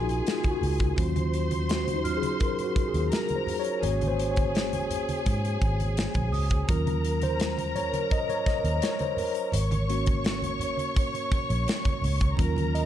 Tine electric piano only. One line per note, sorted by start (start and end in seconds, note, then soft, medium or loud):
0.00 1.00 A#3 medium
0.00 0.98 C#4 soft
0.00 0.27 D#4 medium
0.00 0.27 F4 medium
0.00 0.50 F#4 medium
0.00 1.00 G#4 medium
0.00 1.00 A#4 loud
0.27 0.51 F4 medium
0.50 1.18 F#4 medium
0.98 2.04 F#3 medium
0.98 2.04 C#4 soft
0.98 2.05 F4 medium
1.69 1.92 F#4 medium
1.93 2.15 D#4 medium
2.05 2.37 F#3 soft
2.05 2.37 C#4 soft
2.05 2.38 F4 soft
2.17 2.42 G#4 medium
2.40 2.65 A#4 loud
2.64 2.89 F#4 medium
2.88 3.13 G#4 medium
3.12 3.37 A#4 medium
3.36 3.60 C5 medium
3.60 3.70 C#5 loud
3.83 4.31 A#3 medium
3.83 4.31 C#4 soft
3.83 4.31 F#4 medium
3.83 4.08 C#5 loud
4.07 4.32 C5 loud
4.31 6.05 C#5 medium
6.68 7.16 F#3 medium
6.68 7.16 C#4 soft
6.68 7.17 F4 medium
6.68 7.25 A#4 medium
7.23 7.72 C5 medium
7.76 8.12 C#5 medium
8.12 8.30 D#5 loud
8.30 8.37 C#5 medium
8.47 8.63 D#5 medium
8.83 9.01 C#5 loud
9.00 9.19 C5 medium
9.19 10.93 A#4 medium
9.89 12.35 A#3 medium
9.89 12.35 C#4 medium
9.89 12.35 F#4 medium
12.38 12.86 F#3 medium
12.38 12.86 C#4 medium
12.38 12.86 F4 medium
12.75 12.86 D#5 loud